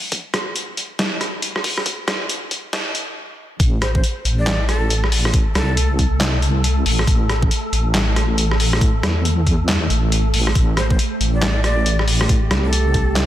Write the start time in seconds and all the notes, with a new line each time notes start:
0.12 kick, closed hi-hat
0.34 cross-stick, closed hi-hat
0.56 closed hi-hat
0.77 closed hi-hat
0.99 snare, closed hi-hat
1.21 cross-stick, closed hi-hat
1.42 closed hi-hat
1.56 cross-stick
1.64 kick, open hi-hat
1.78 cross-stick
1.86 kick, closed hi-hat
2.08 cross-stick, snare, closed hi-hat
2.29 closed hi-hat
2.51 kick, closed hi-hat
2.73 snare, closed hi-hat
2.95 closed hi-hat
3.60 A1 A3 A4, kick, closed hi-hat
3.82 C5, cross-stick, closed hi-hat
3.95 C5, kick
4.04 closed hi-hat
4.25 A1, closed hi-hat
4.39 D5
4.47 snare, clap, closed hi-hat
4.69 A4, cross-stick, closed hi-hat
4.90 closed hi-hat
5.04 cross-stick
5.12 open hi-hat
5.25 cross-stick
5.34 kick, closed hi-hat
5.55 C2 A4, cross-stick, snare, closed hi-hat
5.77 closed hi-hat
5.99 kick, closed hi-hat
6.21 snare, clap, closed hi-hat
6.42 closed hi-hat
6.64 closed hi-hat
6.86 A1, open hi-hat
6.99 cross-stick
7.07 A1, kick, closed hi-hat
7.29 cross-stick, closed hi-hat
7.43 kick
7.51 closed hi-hat
7.72 A1, closed hi-hat
7.95 snare, clap, closed hi-hat
8.16 cross-stick, closed hi-hat
8.38 closed hi-hat
8.51 cross-stick
8.60 open hi-hat
8.73 cross-stick
8.81 kick, closed hi-hat
9.03 E2, cross-stick, snare, closed hi-hat
9.25 closed hi-hat
9.47 kick, closed hi-hat
9.69 snare, clap, closed hi-hat
9.90 A1, closed hi-hat
10.12 closed hi-hat
10.34 A1, open hi-hat
10.47 cross-stick
10.55 A1 G4, kick, closed hi-hat
10.77 C5, cross-stick, closed hi-hat
10.90 C5, kick
10.99 closed hi-hat
11.20 A1, closed hi-hat
11.34 D5
11.42 snare, clap, closed hi-hat
11.64 D5, cross-stick, closed hi-hat
11.86 closed hi-hat
11.99 cross-stick
12.08 open hi-hat
12.21 cross-stick
12.29 kick, closed hi-hat
12.51 C2, cross-stick, snare, closed hi-hat
12.65 A4
12.73 closed hi-hat
12.94 kick, closed hi-hat
13.16 snare, clap, closed hi-hat